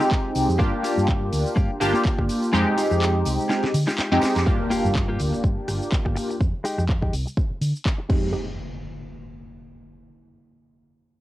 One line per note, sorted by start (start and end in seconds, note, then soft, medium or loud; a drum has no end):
0.00 0.30 G#3 medium
0.00 0.57 G#3 loud
0.00 0.57 C4 medium
0.00 0.57 D#4 medium
0.00 0.30 D#4 medium
0.00 0.30 F4 medium
0.00 0.58 G4 loud
0.00 0.30 G4 loud
0.00 tambourine medium
0.00 shaker soft
0.11 kick loud
0.11 clap loud
0.11 shaker soft
0.35 0.46 C2 medium
0.35 open hi-hat loud
0.35 tambourine medium
0.35 shaker medium
0.49 0.57 F2 medium
0.49 tambourine medium
0.49 shaker soft
0.59 0.73 A#3 loud
0.59 1.78 A#3 loud
0.59 1.78 D4 loud
0.59 0.73 D4 medium
0.59 0.73 F4 loud
0.59 1.78 F4 loud
0.59 0.73 G4 loud
0.59 1.78 G4 loud
0.59 kick loud
0.59 shaker soft
0.83 1.21 A#3 medium
0.83 1.21 D4 medium
0.83 1.22 F4 medium
0.83 1.22 G4 loud
0.83 open hi-hat loud
0.83 tambourine medium
0.83 shaker medium
0.97 1.28 G2 loud
0.97 tambourine soft
0.97 shaker soft
1.08 kick loud
1.08 clap loud
1.08 shaker soft
1.32 1.43 D2 loud
1.32 open hi-hat loud
1.32 tambourine medium
1.32 shaker medium
1.46 tambourine soft
1.46 shaker soft
1.56 1.67 G2 loud
1.56 1.70 A#3 medium
1.56 1.70 D4 medium
1.56 1.70 F4 medium
1.56 1.70 G4 loud
1.56 kick loud
1.56 tambourine soft
1.56 shaker soft
1.80 1.91 G1 loud
1.80 2.50 A#3 medium
1.80 2.51 D4 medium
1.80 2.51 F4 medium
1.80 2.51 G4 loud
1.80 muted clean electric guitar stroke soft
1.80 cross-stick medium
1.80 open hi-hat loud
1.80 tambourine medium
1.80 shaker medium
1.94 2.23 A#3 medium
1.94 2.24 D4 medium
1.94 2.24 F4 medium
1.94 2.24 G4 loud
1.94 tambourine medium
1.94 shaker soft
2.05 kick loud
2.05 clap loud
2.05 shaker soft
2.19 2.27 G1 loud
2.19 kick medium
2.19 cross-stick medium
2.29 open hi-hat loud
2.29 tambourine medium
2.29 shaker medium
2.42 tambourine medium
2.42 shaker soft
2.53 2.64 F2 loud
2.53 2.67 G#3 loud
2.53 3.71 G#3 loud
2.53 3.72 C4 medium
2.53 2.67 D#4 loud
2.53 3.72 D#4 medium
2.53 2.67 F4 loud
2.53 2.67 G4 loud
2.53 3.72 G4 loud
2.53 tambourine soft
2.53 shaker soft
2.77 3.15 G#3 loud
2.77 3.15 D#4 medium
2.77 3.15 F4 medium
2.77 3.16 G4 loud
2.77 open hi-hat loud
2.77 tambourine medium
2.77 shaker medium
2.91 3.22 F2 medium
2.91 cross-stick medium
2.91 tambourine soft
2.91 shaker soft
3.02 clap loud
3.02 tambourine soft
3.02 shaker soft
3.25 3.36 C2 loud
3.25 open hi-hat loud
3.25 tambourine loud
3.25 shaker medium
3.38 tambourine medium
3.38 shaker soft
3.49 3.63 G#3 medium
3.49 3.63 D#4 medium
3.49 3.64 F4 medium
3.49 3.64 G4 loud
3.49 snare medium
3.49 tambourine soft
3.49 shaker soft
3.64 muted fingered electric bass stroke soft
3.64 snare medium
3.74 3.85 D3 medium
3.74 muted clean electric guitar stroke soft
3.74 open hi-hat loud
3.74 tambourine medium
3.74 shaker medium
3.87 4.17 G#3 medium
3.87 4.17 D#4 medium
3.87 4.17 F4 medium
3.87 4.18 G4 loud
3.87 snare medium
3.87 tambourine medium
3.87 shaker soft
3.99 muted fingered electric bass stroke soft
3.99 snare medium
3.99 clap loud
3.99 tambourine soft
3.99 shaker soft
4.12 4.20 F2 loud
4.12 4.44 G#3 loud
4.12 4.44 C4 medium
4.12 4.44 D#4 medium
4.12 4.45 G4 loud
4.22 snare loud
4.22 open hi-hat loud
4.22 tambourine medium
4.22 shaker medium
4.36 4.44 F2 medium
4.36 snare medium
4.36 tambourine medium
4.36 shaker soft
4.46 6.36 A#3 loud
4.46 6.36 D4 medium
4.46 6.36 F4 medium
4.46 6.37 G4 loud
4.46 kick loud
4.46 tambourine soft
4.46 impact medium
4.46 shaker soft
4.70 4.90 A#3 loud
4.70 4.90 F4 loud
4.70 4.90 G4 loud
4.70 open hi-hat loud
4.70 tambourine medium
4.70 shaker medium
4.84 5.15 G2 medium
4.84 tambourine soft
4.84 shaker soft
4.95 kick loud
4.95 clap loud
4.95 shaker soft
5.08 5.19 A#3 medium
5.08 5.19 F4 medium
5.08 5.20 G4 loud
5.19 5.30 D2 loud
5.19 open hi-hat loud
5.19 tambourine medium
5.19 shaker medium
5.32 muted clean electric guitar stroke soft
5.32 tambourine medium
5.32 shaker soft
5.43 5.54 G2 loud
5.43 kick loud
5.43 tambourine soft
5.43 shaker soft
5.57 muted fingered electric bass stroke soft
5.68 5.78 G1 medium
5.68 cross-stick medium
5.68 open hi-hat loud
5.68 tambourine medium
5.68 shaker medium
5.82 tambourine medium
5.82 shaker soft
5.92 kick loud
5.92 clap loud
5.92 shaker soft
6.05 6.14 G1 medium
6.05 muted clean electric guitar stroke medium
6.05 kick medium
6.05 cross-stick medium
6.15 muted clean electric guitar stroke loud
6.15 open hi-hat loud
6.15 tambourine medium
6.15 shaker medium
6.29 muted clean electric guitar stroke soft
6.29 tambourine medium
6.29 shaker soft
6.41 6.51 F2 loud
6.41 kick loud
6.41 shaker soft
6.64 6.83 G#3 loud
6.64 6.83 D#4 loud
6.64 6.84 G4 loud
6.64 open hi-hat loud
6.64 shaker medium
6.78 7.09 F2 medium
6.78 cross-stick medium
6.78 shaker soft
6.89 kick loud
6.89 clap loud
6.89 shaker soft
7.01 7.13 G#3 medium
7.01 7.13 D#4 medium
7.01 7.13 G4 loud
7.01 kick medium
7.13 7.23 C2 loud
7.13 open hi-hat loud
7.13 shaker medium
7.26 muted clean electric guitar stroke soft
7.26 shaker soft
7.37 kick loud
7.37 shaker soft
7.51 muted fingered electric bass stroke soft
7.61 7.72 D3 medium
7.61 open hi-hat loud
7.61 shaker medium
7.75 tambourine medium
7.75 shaker soft
7.86 kick loud
7.86 clap loud
7.86 shaker soft
7.98 muted clean electric guitar stroke medium
8.09 8.32 F2 loud
8.09 8.28 G#3 medium
8.09 8.32 G#3 medium
8.09 8.28 C4 medium
8.09 8.32 D#4 medium
8.09 8.28 D#4 medium
8.09 8.32 G4 medium
8.09 8.29 G4 loud
8.09 kick loud
8.09 crash medium
8.09 impact medium